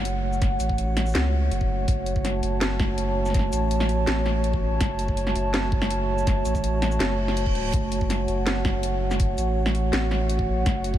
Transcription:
Already playing: sub bass F#1, analog synth pad A3 F#4 C#5 F#5
0.05 closed hi-hat
0.33 shaker
0.42 kick, snare, closed hi-hat
0.60 sub bass A1, closed hi-hat, shaker
0.69 kick
0.78 closed hi-hat
0.97 snare, closed hi-hat
1.06 shaker
1.08 shaker
1.11 shaker
1.13 sub bass C#2, snare, closed hi-hat, shaker
1.22 shaker
1.51 sub bass F#1, closed hi-hat
1.61 kick
1.88 sub bass F#1, kick, closed hi-hat
2.06 closed hi-hat
2.16 kick
2.24 analog synth pad A5, snare, closed hi-hat
2.43 sub bass F#1, closed hi-hat
2.61 snare, closed hi-hat
2.80 kick, snare
2.98 closed hi-hat
3.26 snare, shaker
3.30 snare
3.34 kick, snare, closed hi-hat
3.39 snare
3.53 sub bass A1, closed hi-hat, shaker
3.71 closed hi-hat
3.80 snare
3.89 closed hi-hat
4.07 sub bass A1, snare, closed hi-hat
4.26 snare
4.44 closed hi-hat
4.54 kick
4.81 sub bass F#1, kick, snare, closed hi-hat
4.99 closed hi-hat
5.08 kick
5.17 closed hi-hat
5.27 snare
5.36 sub bass F#1, closed hi-hat
5.54 snare, closed hi-hat
5.72 kick
5.82 snare
5.90 closed hi-hat
6.18 shaker
6.27 kick, snare, closed hi-hat
6.45 sub bass A1, closed hi-hat, shaker
6.55 kick, shaker
6.64 closed hi-hat
6.82 snare, closed hi-hat
6.92 shaker
7.00 sub bass F#1, snare, closed hi-hat, reverse cymbal
7.28 snare
7.37 closed hi-hat
7.46 kick
7.55 closed hi-hat
7.73 sub bass F#1, kick, closed hi-hat
7.92 closed hi-hat
8.01 kick
8.09 analog synth pad F#5, snare, closed hi-hat
8.28 sub bass F#1, closed hi-hat
8.47 snare, closed hi-hat
8.65 kick, snare
8.83 closed hi-hat
9.11 snare, shaker
9.20 kick, closed hi-hat
9.38 sub bass A1, closed hi-hat, shaker
9.66 snare
9.75 closed hi-hat
9.93 sub bass A1, snare, closed hi-hat
10.11 snare
10.29 closed hi-hat
10.39 kick
10.66 sub bass F#1, kick, snare, closed hi-hat
10.84 closed hi-hat
10.94 kick

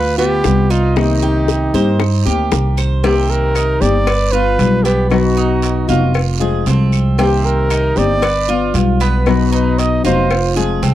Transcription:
Already playing: upright bass D2, cuban tres F4, trumpet B4
0.18 cuban tres B3, nylon-string guitar B3 F4, trumpet G4
0.44 upright bass C2, nylon-string guitar G3 B3 F4, high bongo, low bongo, short guiro
0.70 cuban tres D#4, trumpet F4, short guiro
0.96 nylon-string guitar C3 D#3 A#3 C4 G4, trumpet D#4, high bongo, long guiro, claves
1.23 cuban tres G4, high bongo
1.48 high bongo, short guiro
1.74 upright bass G2, nylon-string guitar D#3 A#3 C4 G4, cuban tres C5, high bongo, short guiro
2.00 muted nylon-string guitar stroke, high bongo, long guiro, claves
2.25 upright bass D2, nylon-string guitar D#3 A#3 C4 G4, cuban tres G4
2.51 upright bass C2, nylon-string guitar D#3 A#3 C4 G4, high bongo, low bongo, short guiro
2.77 cuban tres C5, high bongo, short guiro, claves
3.04 nylon-string guitar C3 D#3 A#3 C4 G4, cuban tres C4, trumpet G4, cowbell, long guiro
3.30 trumpet A#4
3.55 cuban tres D#4, cowbell, short guiro, claves
3.81 upright bass G1, nylon-string guitar D#3 A#3 C4 G4, trumpet D5, short guiro
4.07 cuban tres B4, muted nylon-string guitar stroke, cowbell, long guiro, claves
4.32 nylon-string guitar B3 F4, cuban tres F4, trumpet B4
4.59 upright bass B1, nylon-string guitar G3 B3 F4, cowbell, short guiro
4.84 cuban tres B3, trumpet G4, cowbell, short guiro
5.10 nylon-string guitar B2 F#3 B3 D#4 F#4, trumpet F#4, cowbell, long guiro, claves
5.37 cuban tres D#4
5.62 cowbell, short guiro
5.88 upright bass F1, nylon-string guitar F#3 B3 D#4 F#4, cuban tres F4, short guiro
6.14 muted nylon-string guitar stroke, cowbell, long guiro, claves
6.40 nylon-string guitar F3 G#3 C4 F4, cuban tres G#4
6.66 upright bass C2, nylon-string guitar F3 G#3 C4 F4, cuban tres C4, cowbell, short guiro
6.92 short guiro, claves
7.18 nylon-string guitar C3 D#3 A#3 C4 G4, cuban tres C4, trumpet G4, cowbell, long guiro
7.45 trumpet A#4
7.70 cuban tres D#4, cowbell, short guiro, claves
7.96 upright bass G1, nylon-string guitar D#3 A#3 C4 G4, trumpet D5, short guiro
8.22 cuban tres B4, muted nylon-string guitar stroke, cowbell, long guiro, claves
8.48 nylon-string guitar B3 F4, cuban tres F4
8.74 upright bass B1, nylon-string guitar G3 B3 F4, cowbell, short guiro
9.00 cuban tres B3, trumpet B4, cowbell, short guiro
9.26 nylon-string guitar B2 F#3 B3 D#4 F#4, trumpet B4, cowbell, long guiro, claves
9.52 cuban tres D#4, trumpet B4
9.78 trumpet D#5, cowbell, short guiro
10.04 upright bass F1, nylon-string guitar F#3 B3 D#4 F#4, cuban tres F4, trumpet C5, short guiro
10.31 muted nylon-string guitar stroke, cowbell, long guiro, claves
10.56 nylon-string guitar F3 G#3 C4 F4, cuban tres G#4
10.82 upright bass C2, nylon-string guitar F3 G#3 C4 F4, cuban tres C4, cowbell, short guiro

